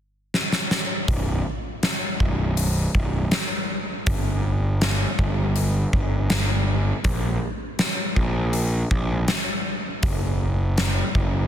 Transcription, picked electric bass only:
1.08 1.41 B0 medium
2.20 2.86 B0 medium
2.95 3.28 B0 medium
4.07 5.05 G1 medium
5.19 5.84 G1 medium
5.93 6.92 G1 medium
7.05 7.38 A#1 medium
8.16 8.82 A#1 medium
8.91 9.24 A#1 medium
10.03 11.02 F#1 medium
11.15 11.47 F#1 medium

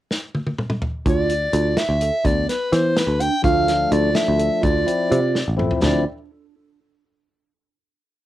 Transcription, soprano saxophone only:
1.09 1.79 D5 medium
1.78 2.27 E5 medium
2.26 2.48 D5 medium
2.49 2.74 B4 medium
2.73 2.99 C5 medium
2.98 3.23 B4 medium
3.21 3.44 G5 medium
3.44 3.94 F5 medium
3.93 4.17 D5 medium
4.15 4.65 E5 medium
4.64 5.59 D5 medium
5.82 6.05 D5 medium

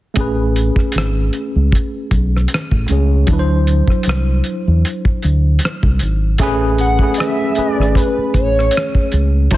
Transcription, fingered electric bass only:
0.17 0.69 A1 medium
0.76 muted fingered electric bass stroke soft
0.95 1.28 G#1 medium
1.56 1.70 C#2 medium
2.12 2.45 B1 medium
2.72 2.87 A1 medium
2.90 3.23 C#2 medium
3.28 3.80 D2 medium
4.07 4.40 C2 medium
4.67 4.82 E2 medium
5.24 5.57 D2 medium
5.84 5.99 C2 medium
6.02 6.35 G#1 medium
6.40 7.07 A1 medium
7.58 muted fingered electric bass stroke soft
7.79 7.94 G#1 medium
8.18 muted fingered electric bass stroke soft
8.35 8.68 A1 medium
9.13 9.47 C#2 medium
9.52 9.57 D2 medium

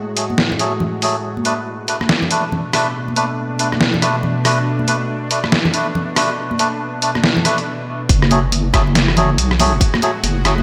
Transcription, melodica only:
0.16 0.25 F#3 medium
0.16 0.25 A3 medium
0.16 0.25 G#4 medium
0.59 0.73 F#3 medium
0.59 0.73 A3 medium
0.59 0.73 G#4 medium
1.02 1.16 F#3 loud
1.02 1.16 A3 medium
1.02 1.16 G#4 loud
1.45 1.54 A3 medium
1.45 1.54 D4 medium
1.45 1.54 B4 loud
1.88 1.96 A3 medium
1.88 1.96 D4 medium
1.88 1.96 B4 medium
2.31 2.44 A3 medium
2.31 2.44 D4 medium
2.31 2.44 B4 medium
2.74 2.87 A3 loud
2.74 2.87 D4 medium
2.74 2.87 B4 loud
3.16 3.25 A3 medium
3.16 3.25 D4 medium
3.16 3.25 B4 loud
3.59 3.68 A3 medium
3.59 3.68 D4 medium
3.59 3.68 B4 medium
4.02 4.16 A3 medium
4.02 4.16 D4 medium
4.02 4.16 B4 medium
4.45 4.58 A3 loud
4.45 4.58 D4 medium
4.45 4.58 B4 loud
4.88 4.96 A3 loud
4.88 4.96 D4 medium
4.88 4.96 B4 loud
5.31 5.39 A3 medium
5.31 5.39 D4 medium
5.31 5.39 B4 medium
5.73 5.87 A3 medium
5.73 5.87 D4 medium
5.73 5.87 B4 medium
6.16 6.30 A3 medium
6.16 6.30 D4 medium
6.16 6.30 B4 loud
6.59 6.68 A3 medium
6.59 6.68 D4 medium
6.59 6.68 B4 loud
7.02 7.11 A3 medium
7.02 7.11 D4 medium
7.02 7.11 B4 medium
7.45 7.58 A3 medium
7.45 7.58 D4 medium
7.45 7.58 B4 medium
8.31 8.39 F#3 loud
8.31 8.39 A3 medium
8.31 8.39 G#4 loud
8.74 8.82 F#3 medium
8.74 8.82 A3 medium
8.74 8.82 G#4 medium
9.17 9.30 F#3 medium
9.17 9.30 A3 medium
9.17 9.30 G#4 medium
9.60 9.73 F#3 loud
9.60 9.73 A3 medium
9.60 9.73 G#4 loud
10.03 10.11 F#3 medium
10.03 10.11 A3 medium
10.03 10.11 G#4 loud
10.45 10.54 F#3 medium
10.45 10.54 A3 medium
10.45 10.54 G#4 medium

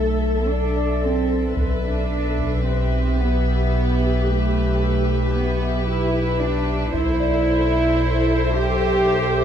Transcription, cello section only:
0.00 0.49 A3 soft
0.49 1.03 D4 medium
1.03 1.57 C4 soft
1.84 2.61 D4 medium
2.66 3.19 C4 soft
3.20 4.27 B3 medium
4.27 5.34 A3 medium
5.35 5.88 B3 medium
5.88 6.40 E4 medium
6.41 6.94 D4 medium
6.94 8.55 E4 medium
8.56 9.44 G4 medium

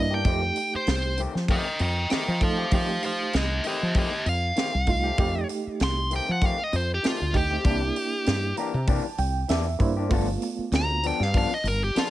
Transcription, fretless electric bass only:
0.00 0.22 G2 medium
0.25 0.50 F2 loud
0.74 muted fretless electric bass stroke soft
0.87 1.25 C2 medium
1.35 1.60 F3 medium
1.80 2.04 F2 medium
2.12 muted fretless electric bass stroke soft
2.28 2.63 F3 medium
2.72 2.96 F3 medium
3.34 3.59 C2 loud
3.83 4.07 F3 medium
4.26 4.51 F2 medium
4.74 5.10 C2 medium
5.18 5.43 F2 medium
5.67 muted fretless electric bass stroke soft
5.81 6.19 C2 loud
6.29 6.53 F3 medium
6.73 6.97 F2 loud
7.05 muted fretless electric bass stroke soft
7.21 7.57 D2 medium
7.64 7.89 C2 loud
8.27 8.52 G2 loud
8.74 8.99 C3 medium
9.18 9.43 C2 loud
9.49 9.77 E2 medium
9.80 10.08 G2 medium
10.11 10.36 G1 loud
10.58 muted fretless electric bass stroke soft
10.72 11.11 D2 medium
11.20 11.45 G2 medium
11.64 11.89 G1 loud

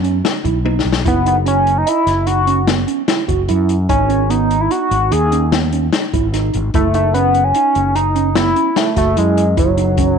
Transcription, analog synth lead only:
1.08 1.26 B3 medium
1.08 1.26 F#5 medium
1.27 1.36 B3 medium
1.27 1.36 F#5 medium
1.48 1.79 C#4 medium
1.48 1.79 G#5 medium
1.78 1.90 D#4 medium
1.78 1.90 A#5 medium
1.88 2.28 E4 loud
1.88 2.28 B5 loud
2.26 2.68 F#4 medium
2.26 2.68 C#6 medium
3.89 4.31 C#4 medium
3.89 4.31 G#5 medium
4.30 4.62 D#4 medium
4.30 4.62 A#5 medium
4.61 4.73 E4 medium
4.61 4.73 B5 medium
4.71 5.13 F#4 loud
4.71 5.13 C#6 loud
5.12 5.52 G#4 loud
5.12 5.52 D#6 loud
6.75 6.93 A3 medium
6.75 6.93 E5 medium
6.95 7.13 A3 medium
6.95 7.13 E5 medium
7.14 7.45 B3 loud
7.14 7.45 F#5 loud
7.44 7.97 C#4 loud
7.44 7.97 G#5 loud
7.95 8.35 D#4 loud
7.95 8.35 A#5 loud
8.36 8.79 E4 loud
8.36 8.79 B5 loud
8.77 8.97 A3 medium
8.77 8.97 E5 medium
8.98 9.16 A3 medium
8.98 9.16 E5 medium
9.18 9.56 G#3 medium
9.18 9.56 D#5 medium
9.59 10.19 F#3 loud
9.59 10.19 C#5 loud

